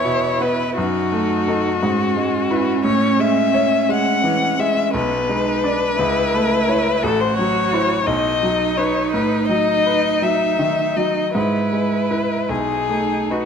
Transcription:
0.00 0.73 E2 soft
0.00 0.41 B3 soft
0.00 0.79 E4 medium
0.00 0.80 G#4 soft
0.00 0.43 C#5 medium
0.04 0.63 B2 soft
0.41 0.77 B3 soft
0.41 0.77 B4 medium
0.77 1.78 F#2 soft
0.77 1.83 D#4 medium
0.77 2.80 F#4 medium
1.12 1.68 A3 soft
1.48 1.78 D#4 soft
1.48 1.78 A4 soft
1.81 2.82 G#2 soft
1.81 4.96 C#4 medium
2.16 2.71 G#3 soft
2.51 2.81 E4 soft
2.51 2.82 B4 soft
2.84 4.90 A2 medium
2.84 3.21 C#5 medium
3.19 3.75 G#3 soft
3.19 3.92 E5 medium
3.54 4.10 C#5 soft
3.89 4.45 G#3 soft
3.89 4.61 F#5 medium
4.24 4.80 E3 soft
4.59 4.93 G#3 soft
4.59 4.94 E5 medium
4.94 5.95 B1 medium
4.94 5.30 B3 soft
4.94 7.05 B4 medium
5.29 5.84 G#3 soft
5.29 5.64 D#4 medium
5.63 5.97 D4 soft
5.63 5.95 D4 soft
5.63 5.95 D5 soft
5.98 7.00 C#2 soft
5.98 7.05 E4 medium
6.34 6.90 A3 soft
6.68 7.00 E4 soft
6.68 7.00 C#5 soft
7.03 8.04 A1 medium
7.03 8.06 F#4 medium
7.03 7.22 A4 medium
7.21 7.36 C5 medium
7.37 7.94 F#3 soft
7.37 8.08 C#5 medium
7.73 8.04 E4 soft
7.73 8.04 C5 soft
8.06 9.10 B1 medium
8.06 11.31 D#4 medium
8.06 8.79 D#5 medium
8.43 8.99 F#3 soft
8.77 9.10 D#4 soft
8.77 9.10 B4 soft
8.77 9.12 C#5 medium
9.12 11.31 A2 soft
9.12 9.47 B4 medium
9.47 10.08 F#3 soft
9.47 10.24 D#5 medium
9.86 10.45 B4 soft
10.22 10.82 F#3 soft
10.22 10.98 E5 medium
10.59 11.20 D#3 soft
10.97 11.35 F#3 soft
10.97 11.34 D#5 medium
11.35 12.46 G#2 soft
11.35 12.52 E4 medium
11.35 12.50 B4 medium
11.73 12.34 G#3 soft
12.11 12.46 E4 soft
12.11 12.46 B4 soft
12.49 13.45 B1 soft
12.49 13.45 D#4 soft
12.49 13.33 G#4 medium
12.89 13.45 A3 soft
13.30 13.45 D#4 soft
13.30 13.45 F#4 soft
13.30 13.45 B4 soft

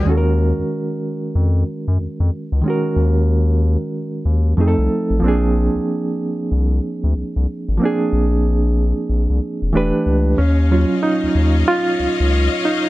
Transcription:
0.00 0.18 C#3 medium
0.00 2.58 D#3 medium
0.00 0.18 F#3 medium
0.00 0.18 A#3 medium
0.00 0.18 F#4 medium
0.05 0.53 D#2 medium
0.05 2.59 G#3 medium
0.05 2.60 C#4 medium
0.05 2.61 F#4 medium
0.11 0.17 A4 medium
0.17 2.65 A#4 medium
0.59 0.64 F2 soft
1.35 1.64 F2 loud
1.88 1.98 F#2 medium
2.00 2.08 F2 soft
2.20 2.30 F2 medium
2.52 2.63 C#2 medium
2.62 4.52 D#3 medium
2.62 4.53 G#3 medium
2.66 4.54 C#4 medium
2.66 4.55 F#4 medium
2.70 4.56 A#4 medium
2.96 3.77 D#2 loud
4.25 4.54 D#2 medium
4.57 4.76 F2 loud
4.57 5.19 F3 medium
4.57 5.22 A3 medium
4.57 5.22 C4 medium
4.57 5.23 D#4 medium
4.57 4.67 G#4 medium
4.68 5.27 A4 medium
4.78 4.89 C2 loud
5.10 5.21 A1 medium
5.20 5.69 A#1 loud
5.20 7.75 F3 medium
5.20 7.76 A#3 medium
5.24 7.77 C4 medium
5.24 7.78 D4 medium
5.28 7.79 G#4 medium
5.75 5.80 C2 medium
6.52 6.80 C2 medium
7.04 7.14 D2 medium
7.16 7.24 C2 soft
7.36 7.47 C2 medium
7.69 7.79 G#1 medium
7.78 9.68 F3 medium
7.78 9.69 A#3 medium
7.82 9.70 C4 medium
7.82 9.71 D4 medium
7.82 9.72 G#4 medium
8.13 8.93 A#1 loud
9.10 9.27 A#1 loud
9.30 9.40 C2 medium
9.62 9.72 F1 medium
9.73 9.92 E1 loud
9.73 10.37 E3 medium
9.73 10.38 A3 medium
9.73 10.39 D4 medium
9.73 10.39 G4 medium
9.77 10.40 B4 medium
10.06 10.35 C#2 medium
10.37 10.85 D#2 loud
10.37 10.71 C#4 medium
10.37 12.89 C#5 medium
10.37 12.89 D#5 medium
10.37 12.89 F5 medium
10.71 12.89 F#3 medium
10.71 12.89 C#4 soft
10.71 11.67 F4 medium
11.03 11.63 D#4 loud
11.24 11.28 D#2 soft
11.35 11.64 D#2 medium
11.68 12.67 F4 loud
12.00 12.08 C#2 soft
12.20 12.49 C#2 medium
12.65 12.89 D#4 medium

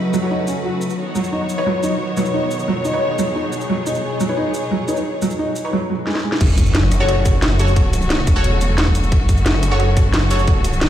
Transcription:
0.00 0.94 C#3 medium
0.00 0.98 F#3 medium
0.00 0.94 A3 medium
0.00 0.99 E4 medium
0.00 3.66 F#4 medium
0.00 0.99 A4 medium
0.00 0.96 B4 medium
0.00 0.98 C#5 medium
0.14 0.18 F#3 loud
0.14 shaker medium
0.22 0.97 F#4 medium
0.22 0.97 A4 medium
0.22 0.97 C#5 medium
0.31 0.37 D#4 loud
0.48 0.54 C#4 medium
0.48 shaker medium
0.65 0.69 F#4 medium
0.81 shaker medium
0.90 shaker soft
0.98 5.73 B2 medium
0.98 5.69 D#3 medium
0.98 5.69 B3 medium
0.98 5.69 C#5 medium
1.15 1.19 F#3 loud
1.15 shaker medium
1.24 5.73 D#4 medium
1.24 4.50 C#5 medium
1.24 shaker soft
1.32 1.39 D#4 loud
1.46 5.73 G#4 medium
1.46 shaker medium
1.58 1.65 D#4 medium
1.58 1.65 B4 medium
1.58 1.65 C#5 loud
1.66 1.70 F#3 loud
1.83 1.90 D#4 loud
1.83 shaker medium
2.17 2.21 F#3 loud
2.17 2.28 D#4 medium
2.17 2.28 B4 medium
2.17 2.28 C#5 medium
2.17 shaker medium
2.26 shaker soft
2.34 2.41 D#4 medium
2.51 shaker medium
2.59 shaker soft
2.68 2.72 F#3 loud
2.85 2.91 D#4 loud
2.85 shaker medium
2.93 4.27 D#4 medium
2.93 4.27 B4 medium
2.93 4.27 C#5 medium
3.19 3.23 F#3 loud
3.19 shaker medium
3.36 3.42 D#4 loud
3.53 shaker medium
3.61 shaker soft
3.70 3.74 F#3 loud
3.70 5.71 G#4 medium
3.86 3.93 D#4 loud
3.86 shaker medium
3.95 shaker soft
4.20 4.24 F#3 loud
4.20 shaker medium
4.29 4.36 D#4 medium
4.29 4.36 B4 medium
4.29 4.36 C#5 loud
4.37 4.44 D#4 loud
4.54 shaker medium
4.71 4.75 F#3 loud
4.88 4.95 D#4 medium
4.88 5.00 D#4 medium
4.88 5.00 B4 medium
4.88 5.00 C#5 medium
4.88 shaker medium
4.97 shaker soft
5.22 5.26 F#3 loud
5.22 shaker medium
5.31 shaker soft
5.39 5.46 D#4 loud
5.56 shaker medium
5.64 5.73 D#4 medium
5.64 5.73 B4 medium
5.64 5.73 C#5 medium
5.73 5.77 F#3 loud
5.90 5.94 F#3 medium
6.07 6.11 G#3 medium
6.07 snare medium
6.15 snare medium
6.24 6.28 G#3 medium
6.32 snare medium
6.41 6.56 F#1 loud
6.41 10.89 C#3 medium
6.41 10.89 F#3 medium
6.41 10.89 A3 medium
6.41 10.89 F#4 medium
6.41 kick loud
6.41 closed hi-hat medium
6.41 crash loud
6.41 impact medium
6.58 6.90 F#1 medium
6.58 kick medium
6.58 closed hi-hat medium
6.58 shaker medium
6.66 shaker soft
6.75 snare loud
6.75 closed hi-hat medium
6.83 cross-stick medium
6.92 8.26 F#1 loud
6.92 cross-stick medium
6.92 closed hi-hat loud
6.92 shaker medium
7.00 7.07 F#4 loud
7.00 7.07 A4 medium
7.00 7.07 C#5 loud
7.09 cross-stick medium
7.09 closed hi-hat medium
7.25 kick loud
7.25 closed hi-hat loud
7.25 shaker medium
7.42 snare loud
7.42 closed hi-hat medium
7.59 7.71 F#4 medium
7.59 7.71 A4 medium
7.59 7.71 C#5 medium
7.59 closed hi-hat loud
7.59 shaker medium
7.68 shaker soft
7.76 kick loud
7.76 closed hi-hat medium
7.93 closed hi-hat medium
7.93 shaker medium
8.02 shaker soft
8.10 snare loud
8.10 closed hi-hat medium
8.19 cross-stick medium
8.27 9.11 E1 loud
8.27 kick loud
8.27 closed hi-hat loud
8.27 shaker medium
8.36 9.69 F#4 medium
8.36 9.69 A4 medium
8.36 9.69 C#5 loud
8.44 closed hi-hat medium
8.61 closed hi-hat medium
8.61 shaker medium
8.78 snare loud
8.78 closed hi-hat medium
8.87 kick medium
8.95 closed hi-hat medium
8.95 shaker medium
9.03 shaker soft
9.12 9.28 F#1 loud
9.12 kick loud
9.12 closed hi-hat medium
9.29 9.61 F#1 medium
9.29 kick medium
9.29 closed hi-hat medium
9.29 shaker medium
9.37 shaker soft
9.46 snare loud
9.46 closed hi-hat medium
9.54 cross-stick medium
9.63 10.89 F#1 loud
9.63 cross-stick soft
9.63 closed hi-hat medium
9.63 shaker medium
9.71 9.78 F#4 loud
9.71 9.78 A4 medium
9.71 9.78 C#5 loud
9.80 cross-stick medium
9.80 closed hi-hat medium
9.97 kick loud
9.97 closed hi-hat medium
9.97 shaker medium
10.14 snare loud
10.14 closed hi-hat medium
10.31 10.42 F#4 medium
10.31 10.42 A4 medium
10.31 10.42 C#5 medium
10.31 closed hi-hat medium
10.31 shaker medium
10.39 shaker soft
10.47 kick loud
10.47 closed hi-hat medium
10.64 closed hi-hat medium
10.64 shaker medium
10.73 shaker soft
10.81 snare loud
10.81 closed hi-hat medium

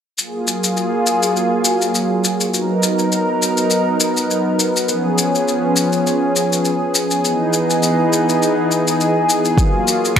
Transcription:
0.17 4.84 F#3 medium
0.17 2.50 A#3 medium
0.17 2.50 F4 medium
0.17 2.50 G#4 medium
0.17 shaker soft
0.47 shaker medium
0.64 shaker medium
0.77 shaker soft
1.07 shaker medium
1.23 shaker medium
1.36 shaker soft
1.65 shaker medium
1.82 shaker medium
1.95 shaker soft
2.24 shaker medium
2.41 shaker soft
2.52 7.19 B3 medium
2.52 4.85 D#4 medium
2.52 4.85 A#4 medium
2.52 shaker soft
2.83 shaker medium
2.99 shaker soft
3.12 shaker soft
3.42 shaker medium
3.57 shaker soft
3.70 shaker soft
4.00 shaker medium
4.17 shaker soft
4.30 shaker soft
4.60 shaker medium
4.76 shaker medium
4.87 7.20 F3 medium
4.87 7.20 C#4 medium
4.87 10.20 G#4 medium
4.87 shaker soft
5.18 shaker medium
5.35 shaker medium
5.48 shaker soft
5.76 shaker medium
5.93 shaker soft
6.07 shaker soft
6.36 shaker medium
6.53 shaker soft
6.65 shaker soft
6.95 shaker medium
7.11 shaker medium
7.22 9.56 E3 medium
7.22 9.56 B3 medium
7.22 9.56 D#4 medium
7.22 shaker soft
7.53 shaker medium
7.70 shaker medium
7.83 shaker soft
8.13 shaker medium
8.29 shaker medium
8.42 shaker soft
8.71 shaker medium
8.88 shaker soft
9.01 shaker soft
9.29 shaker medium
9.45 shaker soft
9.57 10.20 F#3 medium
9.57 10.20 A#3 medium
9.57 10.20 F4 medium
9.57 kick medium
9.57 shaker soft
9.88 shaker medium
10.05 shaker soft
10.16 finger snap medium
10.16 kick loud

